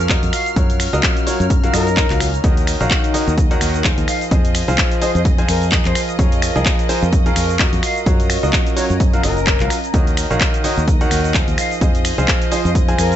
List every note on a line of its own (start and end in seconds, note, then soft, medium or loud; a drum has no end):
0.00 0.16 F2 loud
0.00 1.19 A#4 medium
0.00 1.19 F5 medium
0.00 1.19 C#6 medium
0.00 2.45 F6 medium
0.00 cabasa soft
0.09 0.54 F#3 medium
0.09 0.54 F4 medium
0.09 0.54 F#4 medium
0.09 0.54 A#4 medium
0.09 0.54 D#5 medium
0.09 kick loud
0.09 clap loud
0.09 closed hi-hat medium
0.09 cabasa soft
0.23 0.30 F2 loud
0.23 closed hi-hat medium
0.23 cabasa soft
0.33 3.10 C#4 medium
0.33 0.49 F5 medium
0.33 finger snap medium
0.33 open hi-hat loud
0.33 cabasa medium
0.46 closed hi-hat soft
0.46 cabasa soft
0.56 0.87 F#2 loud
0.56 0.90 F#3 medium
0.56 0.90 F4 medium
0.56 0.90 F#4 medium
0.56 0.90 A#4 medium
0.56 0.90 C#5 medium
0.56 kick loud
0.56 closed hi-hat medium
0.56 cabasa soft
0.70 closed hi-hat medium
0.70 cabasa soft
0.74 3.10 C#5 medium
0.74 3.10 A#5 medium
0.80 finger snap medium
0.80 open hi-hat loud
0.80 cabasa medium
0.93 1.00 C#2 medium
0.93 1.24 F#3 loud
0.93 1.24 F4 medium
0.93 1.24 F#4 medium
0.93 1.24 A#4 medium
0.93 1.24 D#5 loud
0.93 closed hi-hat soft
0.93 cabasa soft
1.03 kick loud
1.03 clap loud
1.03 closed hi-hat medium
1.03 cabasa soft
1.12 3.10 G#5 medium
1.17 closed hi-hat medium
1.17 cabasa soft
1.27 1.44 F#3 medium
1.27 1.44 F4 medium
1.27 1.44 F#4 medium
1.27 1.44 A#4 medium
1.27 1.35 C#5 medium
1.27 1.44 C#5 loud
1.27 open hi-hat loud
1.27 cabasa medium
1.40 1.68 F#2 medium
1.40 1.46 C#5 medium
1.40 closed hi-hat soft
1.40 cabasa soft
1.50 kick loud
1.50 closed hi-hat medium
1.50 swell medium
1.50 cabasa soft
1.63 1.72 F#3 medium
1.63 1.72 F4 medium
1.63 1.72 F#4 medium
1.63 1.72 A#4 medium
1.63 1.72 F5 loud
1.63 closed hi-hat medium
1.63 cabasa soft
1.73 2.04 F#2 medium
1.73 1.85 F#3 medium
1.73 1.85 F4 medium
1.73 1.85 F#4 medium
1.73 1.85 A#4 medium
1.73 2.20 A#4 loud
1.73 1.85 D#5 loud
1.73 finger snap medium
1.73 open hi-hat loud
1.73 cabasa medium
1.87 closed hi-hat soft
1.87 cabasa soft
1.97 kick loud
1.97 clap loud
1.97 closed hi-hat medium
1.97 cabasa soft
2.10 2.39 C#2 loud
2.10 2.25 F#3 medium
2.10 2.25 F4 medium
2.10 2.25 F#4 medium
2.10 2.25 A#4 medium
2.10 2.25 F5 medium
2.10 clap soft
2.10 closed hi-hat medium
2.10 cabasa soft
2.20 finger snap medium
2.20 open hi-hat loud
2.20 cabasa medium
2.34 closed hi-hat soft
2.34 cabasa soft
2.44 2.74 D#2 loud
2.44 2.77 D#3 medium
2.44 4.83 D#4 medium
2.44 2.77 F#4 medium
2.44 2.77 A#4 medium
2.44 2.77 C#5 medium
2.44 2.77 D#5 medium
2.44 9.93 D#5 medium
2.44 kick loud
2.44 closed hi-hat medium
2.44 cabasa soft
2.57 closed hi-hat medium
2.57 cabasa soft
2.67 finger snap medium
2.67 open hi-hat loud
2.67 cabasa medium
2.81 2.88 A#1 medium
2.81 3.12 D#3 medium
2.81 3.12 F#4 medium
2.81 3.12 A#4 medium
2.81 3.12 C#5 medium
2.81 3.12 F5 loud
2.81 closed hi-hat soft
2.81 cabasa soft
2.90 4.80 A#4 medium
2.90 kick loud
2.90 clap loud
2.90 closed hi-hat medium
2.90 cabasa soft
3.04 closed hi-hat medium
3.04 cabasa soft
3.12 3.31 D#3 medium
3.12 3.31 F#4 medium
3.12 3.31 A#4 medium
3.12 3.31 C#5 medium
3.12 3.31 D#5 loud
3.12 4.08 F#5 medium
3.12 open hi-hat loud
3.12 cabasa medium
3.28 3.56 D#2 medium
3.28 closed hi-hat soft
3.28 cabasa soft
3.38 kick loud
3.38 closed hi-hat medium
3.38 cabasa soft
3.51 3.82 D#3 loud
3.51 3.82 F#4 medium
3.51 3.82 A#4 medium
3.51 3.82 C#5 medium
3.51 3.82 F#5 loud
3.51 closed hi-hat medium
3.51 cabasa soft
3.61 3.91 D#2 medium
3.61 finger snap medium
3.61 open hi-hat loud
3.61 cabasa medium
3.74 closed hi-hat soft
3.74 cabasa soft
3.84 4.29 F3 medium
3.84 4.29 F4 medium
3.84 4.29 G#4 medium
3.84 4.29 C5 medium
3.84 4.29 F5 medium
3.84 kick loud
3.84 clap loud
3.84 closed hi-hat medium
3.84 cabasa soft
3.98 4.05 D#2 loud
3.98 closed hi-hat medium
3.98 cabasa soft
4.08 6.71 F4 loud
4.08 4.24 F5 medium
4.08 finger snap medium
4.08 open hi-hat loud
4.08 cabasa medium
4.21 5.96 C5 medium
4.21 closed hi-hat soft
4.21 cabasa soft
4.30 4.62 F2 loud
4.30 4.65 F3 medium
4.30 4.65 F4 medium
4.30 4.65 G#4 medium
4.30 4.65 C5 medium
4.30 4.65 D#5 medium
4.30 8.69 F5 medium
4.30 kick loud
4.30 closed hi-hat medium
4.30 cabasa soft
4.45 closed hi-hat medium
4.45 cabasa soft
4.50 6.71 G#5 medium
4.55 finger snap medium
4.55 open hi-hat loud
4.55 cabasa medium
4.68 4.75 C2 medium
4.68 4.99 F3 loud
4.68 4.99 F4 medium
4.68 4.99 G#4 medium
4.68 4.99 C5 medium
4.68 4.99 F5 loud
4.68 closed hi-hat soft
4.68 cabasa soft
4.78 kick loud
4.78 clap loud
4.78 closed hi-hat medium
4.78 cabasa soft
4.92 closed hi-hat medium
4.92 cabasa soft
5.02 5.19 F3 medium
5.02 5.19 F4 medium
5.02 5.19 G#4 medium
5.02 5.10 C5 medium
5.02 5.19 C5 medium
5.02 5.19 D#5 loud
5.02 open hi-hat loud
5.02 cabasa medium
5.15 5.43 F2 medium
5.15 5.21 C5 medium
5.15 closed hi-hat soft
5.15 cabasa soft
5.25 kick loud
5.25 closed hi-hat medium
5.25 cabasa soft
5.38 5.70 F3 loud
5.38 5.70 F4 medium
5.38 5.70 G#4 medium
5.38 5.70 C5 medium
5.38 5.70 G#5 loud
5.38 closed hi-hat medium
5.38 cabasa soft
5.48 5.79 F2 loud
5.48 5.65 A#4 medium
5.48 finger snap medium
5.48 open hi-hat loud
5.48 cabasa medium
5.62 closed hi-hat soft
5.62 cabasa soft
5.72 6.16 F3 medium
5.72 6.16 F4 medium
5.72 6.16 G#4 medium
5.72 6.16 D#5 medium
5.72 kick loud
5.72 clap loud
5.72 closed hi-hat medium
5.72 cabasa soft
5.85 5.92 F2 loud
5.85 6.01 C5 loud
5.85 clap soft
5.85 closed hi-hat medium
5.85 cabasa soft
5.95 8.69 A#4 medium
5.95 finger snap medium
5.95 open hi-hat loud
5.95 cabasa medium
6.09 closed hi-hat soft
6.09 cabasa soft
6.19 6.49 F2 loud
6.19 6.52 F3 medium
6.19 6.52 F4 medium
6.19 6.52 G#4 medium
6.19 6.52 A#4 medium
6.19 6.52 C#5 loud
6.19 kick loud
6.19 closed hi-hat medium
6.19 cabasa soft
6.32 closed hi-hat medium
6.32 cabasa soft
6.42 finger snap medium
6.42 open hi-hat loud
6.42 cabasa medium
6.55 6.63 C2 medium
6.55 6.87 F3 loud
6.55 6.87 F4 medium
6.55 6.87 G#4 medium
6.55 6.87 A#4 medium
6.55 6.87 D#5 loud
6.55 8.69 C#6 medium
6.55 cabasa soft
6.66 kick loud
6.66 clap loud
6.66 closed hi-hat medium
6.66 cabasa soft
6.79 closed hi-hat medium
6.79 cabasa soft
6.89 7.06 F3 medium
6.89 7.06 F4 medium
6.89 7.06 G#4 medium
6.89 7.06 A#4 medium
6.89 7.06 C5 loud
6.89 open hi-hat loud
6.89 cabasa medium
7.03 7.31 F2 medium
7.03 closed hi-hat soft
7.03 cabasa soft
7.13 kick loud
7.13 closed hi-hat medium
7.13 cabasa soft
7.26 7.57 F3 loud
7.26 7.57 F4 medium
7.26 7.57 G#4 medium
7.26 7.57 A#4 medium
7.26 7.57 F5 loud
7.26 closed hi-hat soft
7.26 cabasa soft
7.36 7.66 F2 loud
7.36 finger snap medium
7.36 open hi-hat loud
7.36 cabasa medium
7.49 closed hi-hat soft
7.49 cabasa soft
7.59 8.04 F#3 medium
7.59 8.04 F4 medium
7.59 8.04 F#4 medium
7.59 8.04 D#5 medium
7.59 kick loud
7.59 clap loud
7.59 closed hi-hat medium
7.59 cabasa soft
7.73 7.80 F2 loud
7.73 closed hi-hat medium
7.73 cabasa soft
7.83 10.60 C#4 medium
7.83 7.99 F5 loud
7.83 finger snap medium
7.83 open hi-hat loud
7.83 cabasa medium
7.96 closed hi-hat soft
7.96 cabasa soft
8.01 10.60 C#5 medium
8.06 8.37 F#2 loud
8.06 8.40 F#3 medium
8.06 8.40 F4 medium
8.06 8.40 F#4 medium
8.06 8.40 A#4 medium
8.06 8.40 C#5 medium
8.06 kick loud
8.06 closed hi-hat medium
8.06 cabasa soft
8.20 closed hi-hat medium
8.20 cabasa soft
8.30 finger snap medium
8.30 open hi-hat loud
8.30 cabasa medium
8.43 8.50 C#2 medium
8.43 8.74 F#3 loud
8.43 8.74 F4 medium
8.43 8.74 F#4 medium
8.43 8.74 A#4 medium
8.43 8.74 D#5 loud
8.43 closed hi-hat soft
8.43 cabasa soft
8.53 kick loud
8.53 clap loud
8.53 closed hi-hat medium
8.53 cabasa soft
8.67 10.60 G#5 medium
8.67 10.60 A#5 medium
8.67 closed hi-hat medium
8.67 cabasa soft
8.76 8.94 F#3 medium
8.76 8.94 F4 medium
8.76 8.94 F#4 medium
8.76 8.94 A#4 medium
8.76 8.94 C#5 loud
8.76 8.85 C#5 medium
8.76 open hi-hat loud
8.76 cabasa medium
8.90 9.19 F#2 medium
8.90 8.96 C#5 medium
8.90 closed hi-hat soft
8.90 cabasa soft
9.00 kick loud
9.00 closed hi-hat medium
9.00 cabasa soft
9.13 9.21 F#3 medium
9.13 9.21 F4 medium
9.13 9.21 F#4 medium
9.13 9.21 A#4 medium
9.13 9.21 F5 loud
9.13 closed hi-hat medium
9.13 cabasa soft
9.23 9.62 F#1 loud
9.23 9.35 F#3 medium
9.23 9.35 F4 medium
9.23 9.35 F#4 medium
9.23 9.35 A#4 medium
9.23 9.70 A#4 medium
9.23 9.35 D#5 loud
9.23 finger snap medium
9.23 open hi-hat loud
9.23 cabasa medium
9.37 closed hi-hat soft
9.37 cabasa soft
9.47 kick loud
9.47 clap loud
9.47 closed hi-hat medium
9.47 cabasa soft
9.60 9.67 C#2 medium
9.60 9.75 F#3 medium
9.60 9.75 F4 medium
9.60 9.75 F#4 medium
9.60 9.75 A#4 medium
9.60 9.75 F5 medium
9.60 clap soft
9.60 closed hi-hat medium
9.60 cabasa soft
9.70 finger snap medium
9.70 open hi-hat loud
9.70 cabasa medium
9.84 closed hi-hat soft
9.84 cabasa soft
9.94 10.24 D#2 loud
9.94 10.27 D#3 medium
9.94 12.34 D#4 medium
9.94 10.27 F#4 medium
9.94 10.27 A#4 medium
9.94 10.27 C#5 medium
9.94 10.27 D#5 medium
9.94 13.16 D#5 medium
9.94 kick loud
9.94 closed hi-hat medium
9.94 cabasa soft
10.07 closed hi-hat medium
10.07 cabasa soft
10.17 finger snap medium
10.17 open hi-hat loud
10.17 cabasa medium
10.30 10.38 A#1 medium
10.30 10.62 D#3 loud
10.30 10.62 F#4 medium
10.30 12.20 A#4 medium
10.30 10.62 A#4 medium
10.30 10.62 C#5 medium
10.30 10.62 F5 loud
10.30 closed hi-hat soft
10.30 cabasa soft
10.41 kick loud
10.41 clap loud
10.41 closed hi-hat medium
10.41 cabasa soft
10.45 11.58 F#5 medium
10.54 closed hi-hat medium
10.54 cabasa soft
10.64 10.81 D#3 medium
10.64 10.81 F#4 medium
10.64 10.81 A#4 medium
10.64 10.81 C#5 medium
10.64 10.81 D#5 loud
10.64 open hi-hat loud
10.64 cabasa medium
10.78 11.06 D#2 medium
10.78 closed hi-hat soft
10.78 cabasa soft
10.88 kick loud
10.88 closed hi-hat medium
10.88 cabasa soft
11.01 11.32 D#3 loud
11.01 11.32 F#4 medium
11.01 11.32 A#4 medium
11.01 11.32 C#5 medium
11.01 11.32 F#5 loud
11.01 closed hi-hat medium
11.01 cabasa soft
11.11 11.41 D#2 medium
11.11 finger snap medium
11.11 open hi-hat loud
11.11 cabasa medium
11.24 closed hi-hat soft
11.24 cabasa soft
11.34 11.79 F3 medium
11.34 11.79 F4 medium
11.34 11.79 G#4 medium
11.34 11.79 C5 medium
11.34 kick loud
11.34 clap loud
11.34 closed hi-hat medium
11.34 cabasa soft
11.48 11.55 D#2 loud
11.48 closed hi-hat medium
11.48 cabasa soft
11.58 13.16 F4 loud
11.58 11.74 F5 medium
11.58 finger snap medium
11.58 open hi-hat loud
11.58 cabasa medium
11.71 closed hi-hat soft
11.71 cabasa soft
11.79 12.12 F2 loud
11.79 12.15 F3 medium
11.79 12.15 F4 medium
11.79 12.15 G#4 medium
11.79 13.16 C5 medium
11.79 12.15 C5 medium
11.79 12.15 D#5 medium
11.79 kick loud
11.79 closed hi-hat medium
11.79 cabasa soft
11.95 closed hi-hat medium
11.95 cabasa soft
12.00 13.16 F5 medium
12.05 finger snap medium
12.05 open hi-hat loud
12.05 cabasa medium
12.18 12.25 C2 medium
12.18 12.49 F3 loud
12.18 12.49 F4 medium
12.18 12.49 G#4 medium
12.18 12.49 C5 medium
12.18 12.49 F5 loud
12.18 closed hi-hat soft
12.18 cabasa soft
12.28 kick loud
12.28 clap loud
12.28 closed hi-hat medium
12.28 cabasa soft
12.42 13.16 G#5 loud
12.42 closed hi-hat medium
12.42 cabasa soft
12.52 12.69 F3 medium
12.52 12.69 F4 medium
12.52 12.69 G#4 medium
12.52 12.69 C5 medium
12.52 12.60 C5 medium
12.52 12.69 D#5 loud
12.52 open hi-hat loud
12.52 cabasa medium
12.65 12.94 F2 medium
12.65 12.71 C5 medium
12.65 closed hi-hat soft
12.65 cabasa soft
12.75 kick loud
12.75 closed hi-hat medium
12.75 cabasa soft
12.88 13.16 F3 loud
12.88 13.16 F4 medium
12.88 13.16 G#4 medium
12.88 13.16 C5 medium
12.88 13.16 G#5 loud
12.88 closed hi-hat medium
12.88 cabasa soft
12.98 13.16 F2 medium
12.98 13.15 A#4 medium
12.98 finger snap medium
12.98 open hi-hat loud
12.98 cabasa medium
13.12 closed hi-hat soft
13.12 cabasa soft